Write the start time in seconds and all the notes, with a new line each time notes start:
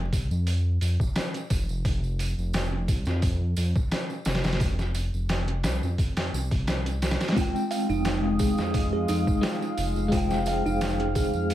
Already playing: F1
0.12 C2, kick, open hi-hat, tambourine
0.31 F2, tambourine
0.47 open hi-hat, tambourine
0.81 F2, open hi-hat, tambourine
1.00 kick, tambourine
1.16 snare, open hi-hat, tambourine
1.34 closed hi-hat, tambourine
1.50 F1, kick, open hi-hat, tambourine
1.69 F1, tambourine
1.85 kick, open hi-hat, tambourine
2.04 tambourine
2.19 open hi-hat, tambourine
2.38 F1, tambourine
2.53 snare, open hi-hat, tambourine
2.88 C2, kick, open hi-hat, tambourine
3.05 F2, snare, tambourine
3.22 kick, open hi-hat, tambourine
3.56 F2, open hi-hat, tambourine
3.75 kick, tambourine
3.91 snare, open hi-hat, tambourine
4.10 tambourine
4.25 F1, snare, open hi-hat, tambourine
4.35 snare, open hi-hat
4.44 F1, snare, open hi-hat, tambourine
4.52 snare, open hi-hat
4.60 kick, open hi-hat, tambourine
4.79 snare, tambourine
4.95 open hi-hat, tambourine
5.14 F1, tambourine
5.29 snare, open hi-hat, tambourine
5.48 closed hi-hat
5.64 C2, snare, open hi-hat, tambourine
5.83 F2, tambourine
5.98 kick, open hi-hat, tambourine
6.17 snare, open hi-hat, tambourine
6.33 C2, tambourine
6.51 kick, open hi-hat, tambourine
6.67 snare, open hi-hat, tambourine
6.86 closed hi-hat, tambourine
7.02 snare, open hi-hat, tambourine
7.11 snare, open hi-hat
7.21 snare, open hi-hat, tambourine
7.28 G#3, snare, open hi-hat
7.35 G#3 C4 D#4 F4 F5 D#6, kick, open hi-hat, tambourine
7.41 G5
7.56 tambourine
7.71 F5, open hi-hat, tambourine
7.89 F1 D#4, tambourine
8.05 snare, open hi-hat, tambourine
8.39 C2 G#4, kick, open hi-hat, tambourine
8.58 F2, snare, tambourine
8.74 kick, open hi-hat, tambourine
8.93 G#4
9.08 F2 D#4, open hi-hat, tambourine
9.27 kick, tambourine
9.41 G#3 C4 D#4 F4, snare, open hi-hat, tambourine
9.46 G4
9.62 tambourine
9.78 F1, open hi-hat, tambourine
9.96 F1, tambourine
10.08 G#3 C4 F4 F6, kick, open hi-hat, tambourine
10.15 D#4 G5
10.30 snare, tambourine
10.46 F5, open hi-hat, tambourine
10.65 F1 D#4, tambourine
10.81 snare, open hi-hat, tambourine
11.00 closed hi-hat
11.15 C2 G#4, kick, open hi-hat, tambourine
11.33 F2, tambourine
11.50 open hi-hat, tambourine